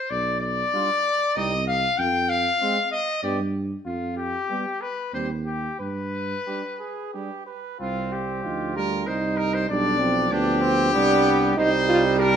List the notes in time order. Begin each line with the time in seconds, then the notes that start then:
Already playing: C5
0.10 B1 D5
0.41 D5
0.74 G3 D4 F4
1.36 C2 G3 C4 D#4 D#5
1.67 F5
1.98 F2 G5
2.29 F5
2.61 G#3 C4
2.91 D#5
3.23 G2 G3 B3 G4 D5
3.86 F2 F4
4.17 G4
4.50 G3 B3 G4
4.81 B4
5.13 D#2 G3 C4 G4 C5
5.46 G4
5.79 G2 B4
6.46 G3 D4 G4
6.80 G#4
7.13 G3 D4 G4
7.46 B4
7.80 C2 G3 C4 F4
8.12 G4
8.42 D2 F3 D#4 F4
8.76 G3 G4 A#4
9.06 C2 G3 D#4 C5
9.37 A#4
9.54 C5
9.68 B1 G3 D4 D5
10.00 F3 C4
10.31 D2 B3 D4 G4
10.61 C4
10.93 C2 G3 B3 D4
11.57 C2 G3 D#4 C5
11.89 F4
12.19 D4 G4 A#4